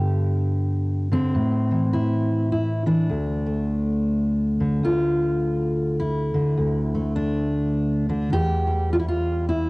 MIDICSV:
0, 0, Header, 1, 2, 480
1, 0, Start_track
1, 0, Tempo, 580833
1, 1119, Time_signature, 3, 2, 24, 8
1, 8013, End_track
2, 0, Start_track
2, 0, Title_t, "Steel-string acoustic guitar"
2, 0, Program_c, 0, 25
2, 0, Note_on_c, 0, 43, 70
2, 0, Note_on_c, 0, 50, 64
2, 0, Note_on_c, 0, 59, 39
2, 0, Note_on_c, 0, 67, 90
2, 913, Note_off_c, 0, 50, 0
2, 923, Note_on_c, 0, 50, 62
2, 931, Note_on_c, 0, 60, 83
2, 956, Note_off_c, 0, 59, 0
2, 1095, Note_off_c, 0, 43, 0
2, 1113, Note_on_c, 0, 45, 68
2, 1116, Note_off_c, 0, 50, 0
2, 1125, Note_off_c, 0, 67, 0
2, 1413, Note_on_c, 0, 52, 43
2, 1597, Note_on_c, 0, 64, 85
2, 2074, Note_off_c, 0, 64, 0
2, 2079, Note_off_c, 0, 60, 0
2, 2084, Note_on_c, 0, 64, 79
2, 2356, Note_off_c, 0, 52, 0
2, 2365, Note_on_c, 0, 52, 65
2, 2367, Note_off_c, 0, 64, 0
2, 2371, Note_on_c, 0, 62, 70
2, 2534, Note_off_c, 0, 52, 0
2, 2554, Note_off_c, 0, 45, 0
2, 2559, Note_on_c, 0, 38, 74
2, 2863, Note_on_c, 0, 57, 41
2, 3803, Note_on_c, 0, 50, 57
2, 3981, Note_off_c, 0, 57, 0
2, 3982, Note_off_c, 0, 38, 0
2, 3992, Note_on_c, 0, 38, 69
2, 3996, Note_off_c, 0, 62, 0
2, 4002, Note_on_c, 0, 65, 85
2, 4951, Note_off_c, 0, 65, 0
2, 4955, Note_on_c, 0, 64, 80
2, 5230, Note_off_c, 0, 50, 0
2, 5240, Note_on_c, 0, 50, 63
2, 5423, Note_off_c, 0, 38, 0
2, 5432, Note_on_c, 0, 38, 72
2, 5739, Note_on_c, 0, 57, 44
2, 5911, Note_off_c, 0, 64, 0
2, 5915, Note_on_c, 0, 62, 82
2, 6676, Note_off_c, 0, 50, 0
2, 6680, Note_off_c, 0, 62, 0
2, 6686, Note_on_c, 0, 50, 61
2, 6690, Note_on_c, 0, 62, 81
2, 6860, Note_off_c, 0, 57, 0
2, 6874, Note_off_c, 0, 38, 0
2, 6876, Note_off_c, 0, 50, 0
2, 6877, Note_on_c, 0, 40, 75
2, 6878, Note_off_c, 0, 62, 0
2, 6883, Note_on_c, 0, 67, 105
2, 7164, Note_on_c, 0, 55, 43
2, 7360, Note_off_c, 0, 67, 0
2, 7378, Note_on_c, 0, 65, 90
2, 7430, Note_off_c, 0, 65, 0
2, 7433, Note_on_c, 0, 64, 80
2, 7500, Note_off_c, 0, 64, 0
2, 7507, Note_on_c, 0, 65, 91
2, 7838, Note_off_c, 0, 65, 0
2, 7841, Note_on_c, 0, 64, 90
2, 8013, Note_off_c, 0, 40, 0
2, 8013, Note_off_c, 0, 55, 0
2, 8013, Note_off_c, 0, 64, 0
2, 8013, End_track
0, 0, End_of_file